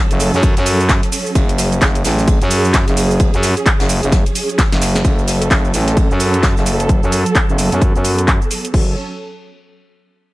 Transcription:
Already playing: string section F#3 C#4 A4
0.11 fm bass F#1, closed hi-hat, ride, shaker
0.19 open hi-hat, ride, shaker
0.34 fm bass F#2, snare, shaker
0.43 kick, closed hi-hat, ride, shaker
0.57 fm bass F#2, snare, closed hi-hat, shaker
0.66 open hi-hat, ride, shaker
0.80 shaker
0.88 kick, snare, clap, closed hi-hat, ride, shaker
1.02 snare, closed hi-hat, shaker
1.12 open hi-hat, ride, shaker
1.26 shaker
1.35 fm bass F#1, string section G#4, kick, closed hi-hat, ride, shaker
1.49 closed hi-hat, ride, shaker
1.58 snare, open hi-hat, ride, shaker
1.72 closed hi-hat, shaker
1.81 fm bass F#1, kick, snare, clap, closed hi-hat, ride, shaker
1.95 closed hi-hat, shaker
2.04 fm bass A1, snare, open hi-hat, ride, shaker
2.19 snare, shaker
2.28 kick, closed hi-hat, ride, shaker
2.41 fm bass F#2, closed hi-hat, shaker
2.51 open hi-hat, ride, shaker
2.65 shaker
2.73 kick, snare, clap, closed hi-hat, ride, shaker
2.87 fm bass F#1, snare, closed hi-hat, shaker
2.97 open hi-hat, ride, shaker
3.11 shaker
3.19 kick, closed hi-hat, ride, shaker
3.34 fm bass F#2, closed hi-hat, shaker
3.43 snare, open hi-hat, ride, shaker
3.57 closed hi-hat, shaker
3.66 kick, clap, closed hi-hat, ride, shaker
3.80 fm bass F#1, snare, closed hi-hat, ride, shaker
3.89 open hi-hat, shaker
4.03 fm bass F#1, closed hi-hat, ride, shaker
4.12 kick, snare, closed hi-hat, ride, shaker
4.26 closed hi-hat, shaker
4.35 open hi-hat, ride, shaker
4.49 closed hi-hat, shaker
4.59 kick, snare, clap, closed hi-hat, ride, shaker
4.72 fm bass F#1, snare, closed hi-hat, shaker
4.82 snare, open hi-hat, ride, shaker
4.96 snare, closed hi-hat, shaker
5.05 fm bass F#1, string section F#3 C#4 A4, kick, closed hi-hat, ride, shaker
5.18 ride, shaker
5.27 snare, open hi-hat, ride, shaker
5.42 closed hi-hat, shaker
5.51 fm bass F#1, kick, snare, clap, closed hi-hat, ride, shaker
5.65 shaker
5.74 fm bass A1, open hi-hat, ride, shaker
5.88 snare, closed hi-hat, shaker
5.97 kick, closed hi-hat, ride, shaker
6.11 fm bass F#2, shaker
6.20 open hi-hat, ride, shaker
6.34 closed hi-hat, shaker
6.43 kick, snare, clap, closed hi-hat, ride, shaker
6.57 fm bass F#1, snare, shaker
6.65 open hi-hat, ride, shaker
6.80 closed hi-hat, shaker
6.89 string section B3, kick, closed hi-hat, shaker
7.03 fm bass F#2, shaker
7.12 open hi-hat, shaker
7.26 closed hi-hat, shaker
7.35 kick, clap, closed hi-hat, shaker
7.49 fm bass F#1, shaker
7.58 open hi-hat, shaker
7.72 fm bass F#2, closed hi-hat, shaker
7.82 kick, closed hi-hat, shaker
7.95 fm bass F#2, shaker
8.05 open hi-hat, shaker
8.19 closed hi-hat, shaker
8.28 kick, clap, closed hi-hat, shaker
8.42 shaker
8.51 open hi-hat, shaker
8.65 closed hi-hat, shaker
8.74 fm bass F#1, string section F#3 C#4 A4, kick, crash

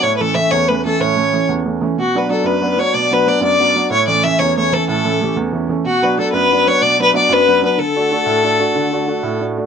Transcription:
0.02 upright piano A2, flute C#5, fiddle C#5
0.16 flute A4, fiddle B4
0.21 upright piano E3 A3 C#4, fiddle A4
0.35 upright piano E3 A3 C#4, fiddle E5, flute E5
0.51 upright piano E2, fiddle C#5, flute C#5
0.68 upright piano E3 A3 C#4, fiddle B4, flute B4
0.85 upright piano E3 A3 C#4, flute A4, fiddle A4
1.00 upright piano A2, flute C#5, fiddle C#5
1.17 upright piano E3 A3 C#4
1.33 upright piano E3 A3 C#4
1.49 upright piano E2
1.66 upright piano E3 A3 C#4
1.81 upright piano E3 A3 C#4
1.97 upright piano B2, flute F#4, fiddle F#4
2.14 upright piano F#3 B3 D4, flute B4, fiddle B4
2.29 upright piano F#3 B3 D4, fiddle A4, flute A4
2.44 upright piano F#2, fiddle B4, flute B4
2.59 upright piano F#3 B3 D4, flute B4
2.70 flute B4
2.77 upright piano F#3 B3 D4, fiddle C#5, flute C#5
2.94 upright piano B2, fiddle D5, flute D5
3.11 upright piano F#3 B3 D4, fiddle B4, flute B4
3.26 upright piano F#3 B3 D4, fiddle D5
3.41 upright piano F#2, flute D5, fiddle D5
3.60 upright piano F#3 B3 D4
3.75 upright piano F#3 B3 D4
3.90 upright piano A2, fiddle C#5, flute C#5
4.08 upright piano E3 A3 C#4, fiddle D5, flute D5
4.24 upright piano E3 A3 C#4, fiddle E5, flute E5
4.39 upright piano E2, fiddle C#5, flute C#5
4.57 upright piano E3 A3 C#4, fiddle C#5, flute C#5
4.72 upright piano E3 A3 C#4, fiddle A4, flute A4
4.88 upright piano A2, fiddle A4, flute A4
5.05 upright piano E3 A3 C#4
5.21 upright piano E3 A3 C#4, flute G4
5.36 upright piano E2
5.53 upright piano E3 A3 C#4
5.69 upright piano E3 A3 C#4
5.84 upright piano B2, fiddle F#4, flute F#4
6.02 upright piano F#3 B3 D4, fiddle B4
6.18 upright piano F#3 B3 D4, flute A4, fiddle A4
6.32 upright piano F#2, fiddle B4, flute B4
6.51 upright piano F#3 B3 D4
6.66 upright piano F#3 B3 D4, fiddle C#5
6.81 upright piano B2, fiddle D5, flute D5
6.99 upright piano F#3 B3 D4, flute B4, fiddle B4
7.13 upright piano F#3 B3 D4, fiddle D5, flute D5 E5
7.29 upright piano F#2, flute B4, fiddle B4
7.47 upright piano F#3 B3 D4
7.62 upright piano F#3 B3 D4, flute B4, fiddle B4
7.77 upright piano D3, fiddle A4, flute A4
7.96 upright piano A3 D4 F#4
8.11 upright piano A3 D4 F#4
8.26 upright piano A2
8.43 upright piano A3 D4 F#4
8.59 upright piano A3 D4 F#4
8.75 upright piano D3
8.92 upright piano A3 D4 F#4
9.07 upright piano A3 D4 F#4
9.23 upright piano A2
9.41 upright piano A3 D4 F#4
9.57 upright piano A3 D4 F#4

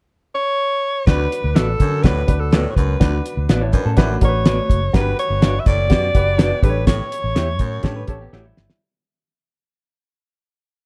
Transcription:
0.35 alto saxophone C#5
1.07 baritone saxophone D2, fingered electric bass D2, upright piano D4 F#4 B4, alto saxophone B4, kick, snare, closed hi-hat
1.32 closed hi-hat
1.44 fingered electric bass D2
1.55 fingered electric bass A1, clean electric guitar B3 F#4 B4 D5, alto saxophone A4, snare, closed hi-hat
1.80 baritone saxophone F#2, fingered electric bass D3, kick, closed hi-hat
2.03 fingered electric bass D2, baritone saxophone A2, upright piano D4 F#4 B4, alto saxophone B4, kick, snare, closed hi-hat
2.27 fingered electric bass D2, upright piano D4 F#4 B4, kick, closed hi-hat
2.40 alto saxophone A4
2.52 baritone saxophone A2, clean electric guitar B3 F#4 B4 D5, snare, closed hi-hat
2.70 alto saxophone C#5
2.76 fingered electric bass C#2, baritone saxophone F#2, alto saxophone B4, kick, closed hi-hat
3.00 fingered electric bass D2, baritone saxophone D2, upright piano D4 F#4 B4, kick, snare, closed hi-hat
3.26 closed hi-hat
3.37 fingered electric bass D2
3.49 fingered electric bass A1, clean electric guitar B3 F#4 B4 D5, snare, closed hi-hat
3.61 clean electric guitar E4 C#5
3.73 baritone saxophone F#2, clean electric guitar D4 B4, kick, closed hi-hat
3.85 fingered electric bass A2, clean electric guitar C#4 A4
3.97 fingered electric bass A1, baritone saxophone F#2, upright piano D4 F#4 B4, clean electric guitar E4, kick, snare, closed hi-hat
4.10 clean electric guitar A3 F#4
4.21 fingered electric bass A1, upright piano D4 F#4 A#4, alto saxophone C#5, kick, closed hi-hat
4.28 upright piano B4
4.46 clean electric guitar B3 F#4 B4 D5, snare, closed hi-hat
4.70 fingered electric bass F#1, kick, closed hi-hat
4.93 fingered electric bass G1, baritone saxophone G2, upright piano F#4 G4 A#4, alto saxophone B4, kick, snare, closed hi-hat
5.00 upright piano B4
5.19 alto saxophone C#5, closed hi-hat
5.30 fingered electric bass G1
5.42 clean electric guitar D4 F#4 B4 D5, snare, closed hi-hat
5.60 alto saxophone E5
5.66 fingered electric bass F#1, baritone saxophone A2, alto saxophone D5, kick, closed hi-hat
5.90 fingered electric bass F#2, baritone saxophone B2, upright piano F#4 G4 D5, kick, snare, closed hi-hat
6.15 fingered electric bass F#1, upright piano F#4 G4 B4, kick, closed hi-hat
6.38 baritone saxophone B2, clean electric guitar D4 F#4 B4 D5, snare, closed hi-hat
6.62 fingered electric bass A1, baritone saxophone G2, upright piano G4 A4 B4, alto saxophone B4, kick, closed hi-hat
6.69 upright piano C#5
6.87 baritone saxophone A2, alto saxophone C#5, kick, snare, closed hi-hat
7.12 closed hi-hat
7.24 fingered electric bass A1
7.35 fingered electric bass E2, clean electric guitar A3 E4 G4 C#5, snare, closed hi-hat
7.59 baritone saxophone F#2, fingered electric bass A2, kick, closed hi-hat
7.83 baritone saxophone G2, fingered electric bass A2, clean electric guitar C#4 A4, upright piano G4 A4 C#5, kick, snare, closed hi-hat
7.96 clean electric guitar B4
8.07 fingered electric bass A1, clean electric guitar C#4 A4, upright piano G4 A4 C#5, kick, closed hi-hat
8.21 clean electric guitar B3 G4
8.33 fingered electric bass A1, clean electric guitar A3 E4 F#4 G4 C#5, snare
8.46 clean electric guitar G3 E4
8.57 fingered electric bass G1, snare
8.70 snare

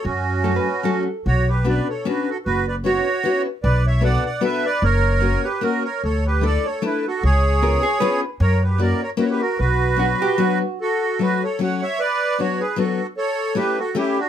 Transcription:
0.04 upright bass F#2, accordion C#4 F#4
0.44 steel-string acoustic guitar F#3 A3 C#4 F#4, hollow-body jazz guitar A4
0.56 hollow-body jazz guitar B4
0.83 steel-string acoustic guitar F#3 A3 C#4 F#4, hollow-body jazz guitar A4
1.26 upright bass B1, accordion F#4 C#5
1.49 accordion G4 B4
1.64 steel-string acoustic guitar B3 C#4 D4 F#4, accordion B4 D5
1.89 accordion A4 C#5
2.05 steel-string acoustic guitar B3 C#4 D4 F#4, accordion F#4 B4
2.29 accordion F#4 A4
2.46 upright bass F#1, accordion F#4 B4
2.67 accordion B4 D5
2.84 steel-string acoustic guitar B3 C#4 E4 F#4, accordion F#4 C#5
3.23 steel-string acoustic guitar B3 C#4 E4 F#4
3.63 upright bass B1, accordion B4 D5
3.87 accordion C#5 E5
4.01 steel-string acoustic guitar B3 D4 F#4 A4, accordion D5 F#5
4.25 accordion D5 F#5
4.41 steel-string acoustic guitar B3 D4 F#4 A4, accordion B4 E5
4.66 accordion B4 D5
4.82 upright bass F#1, accordion A#4 C#5
5.20 steel-string acoustic guitar A#3 C#4 F#4 A#4
5.44 accordion G4 B4
5.61 steel-string acoustic guitar A#3 C#4 F#4 A#4, accordion F#4 A#4
5.84 accordion A#4 C#5
6.04 upright bass D2, accordion A4 C#5
6.26 accordion G4 B4
6.41 steel-string acoustic guitar A3 D4 E4 A4, accordion D5
6.45 accordion A4
6.66 accordion A4 C#5
6.82 steel-string acoustic guitar A3 D4 E4 A4, accordion E4 B4
7.07 accordion F#4 A4
7.23 upright bass C#2, accordion G#4 C#5
7.61 steel-string acoustic guitar B3 C#4 F4 G#4, hollow-body jazz guitar A#4
7.83 hollow-body jazz guitar G#4
8.00 steel-string acoustic guitar B3 C#4 F4 G#4, hollow-body jazz guitar B4
8.40 upright bass F#2, accordion A#4 C#5
8.63 accordion G4 B4
8.78 steel-string acoustic guitar A#3 C#4 E4 F#4, accordion A#4 D5
9.02 accordion A#4 C#5
9.17 steel-string acoustic guitar A#3 C#4 E4 F#4, accordion F#4 B4
9.25 accordion C#5
9.30 accordion G4 B4
9.40 accordion F#4 A#4
9.59 upright bass B1, accordion F#4 B4
9.96 steel-string acoustic guitar F#3 B3 D4 F#4, hollow-body jazz guitar F#4
10.22 hollow-body jazz guitar G4
10.38 steel-string acoustic guitar F#3 B3 D4 F#4, hollow-body jazz guitar F#4
10.81 accordion F#4 A4
11.19 steel-string acoustic guitar F#3 A3 C#4 F#4, accordion F#4 B4
11.44 accordion A4 C#5
11.59 steel-string acoustic guitar F#3 A3 C#4 F#4, accordion C#5 F#5
11.82 accordion C#5 E5
12.00 accordion B4 D5
12.39 steel-string acoustic guitar F#3 B3 D4 F#4, accordion F#4 C#5
12.60 accordion G#4 B4
12.76 steel-string acoustic guitar F#3 B3 D4 F#4, accordion F#4 A4
13.17 accordion A4 C#5
13.55 steel-string acoustic guitar A3 C#4 E4 G4, accordion G4 B4
13.79 accordion F#4 A4
13.95 steel-string acoustic guitar A3 C#4 E4 G4, accordion E4 G4
14.19 accordion D4 F#4

